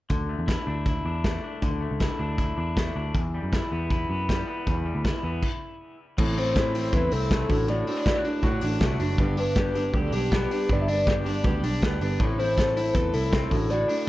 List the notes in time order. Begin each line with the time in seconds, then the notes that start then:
0.10 D2 D3, kick, closed hi-hat
0.29 A3
0.39 E2
0.48 E4, kick, snare, closed hi-hat
0.67 D2 D4
0.86 E4, kick, closed hi-hat
1.05 E2 D4
1.24 A3, kick, snare, closed hi-hat
1.44 D4
1.62 D2 D3, kick, closed hi-hat
1.81 A3
1.91 C#2
2.00 E4, kick, snare, closed hi-hat
2.19 D2 D4
2.38 E4, kick, closed hi-hat
2.57 E2 D4
2.77 A3, kick, snare, closed hi-hat
2.96 D2 D4
3.14 E2, kick, closed hi-hat
3.34 G3
3.43 F#2
3.52 E4, kick, snare, closed hi-hat
3.72 E2 B3
3.90 E4, kick, closed hi-hat
4.10 F#2 B3
4.29 G3, kick, snare, closed hi-hat
4.47 B3
4.67 E2, kick, closed hi-hat
4.85 G3
4.95 D2
5.04 E4, kick, snare, closed hi-hat
5.23 E2 B3
5.42 kick, crash
6.17 A1 A2 E3 A3 C4 E4, kick, crash
6.37 A3 C4 E4 C5, open hi-hat
6.56 E3 A3 C4 E4, kick, snare, closed hi-hat
6.75 A3 C4 E4, open hi-hat
6.93 E2 A2 E3 A3 C4 E4 B4, kick, closed hi-hat
7.12 C2 A3 C4 E4 A4, open hi-hat
7.30 E3 A3 C4 E4, kick, snare, closed hi-hat
7.49 A1 A2 A3 D4 F#4, kick, open hi-hat
7.68 A2 D3 A3 D4 F#4 D5, closed hi-hat
7.87 A3 C4 D4 F#4 D5, open hi-hat
7.97 D4
8.05 D3 A3 D4 E4 F#4, kick, snare, closed hi-hat
8.15 F#4
8.24 A3 D4 F#4, open hi-hat
8.42 A2 D3 A3 D4 F#4, kick, closed hi-hat
8.61 A1 A3 D4 F#4, open hi-hat
8.81 C2 D3 A3 D4 F#4, kick, snare, closed hi-hat
9.00 F#1 A3 D4 F#4, open hi-hat
9.18 G1 G2 D3 G3 B3 D4 G4, kick, closed hi-hat
9.37 G3 B3 D4 G4 B4, open hi-hat
9.56 G3 B3 D4 G4, kick, snare, closed hi-hat
9.75 G3 B3 D4 G4, open hi-hat
9.93 D2 G2 D3 G3 B3 D4 G4 A4, kick, closed hi-hat
10.12 B1 G3 B3 D4 G4, open hi-hat
10.31 G3 B3 D4 G4, kick, snare, closed hi-hat
10.51 G3 B3 D4 G4, open hi-hat
10.69 G1 G2 D3 G3 B3 D4 G4 D5, kick, closed hi-hat
10.82 E5
10.88 G3 B3 D4 G4 D5, open hi-hat
11.07 G3 B3 D4 G4, kick, snare, closed hi-hat
11.26 G3 B3 D4 G4, open hi-hat
11.44 D2 G2 D3 G3 B3 D4 G4, kick, closed hi-hat
11.63 B1 G3 B3 D4 G4, open hi-hat
11.81 D2 G3 B3 D4 G4, kick, snare, closed hi-hat
12.01 G1 G3 B3 D4 G4, open hi-hat
12.19 A1 A2 E3 A3 C4 E4 A4, kick, closed hi-hat
12.38 A3 C4 E4 A4 C5, open hi-hat
12.57 A3 C4 E4 A4, kick, snare, closed hi-hat
12.76 A3 C4 E4 A4, open hi-hat
12.94 E2 A2 E3 A3 C4 E4 A4 B4, kick, closed hi-hat
13.12 C2 A3 C4 E4 A4, open hi-hat
13.32 A3 C4 E4 A4, kick, snare, closed hi-hat
13.51 A1 A2 A3 D4 F#4 A4, kick, open hi-hat
13.70 A2 D3 A3 D4 F#4 A4 D5, closed hi-hat
13.88 A3 D4 F#4 A4 D5, open hi-hat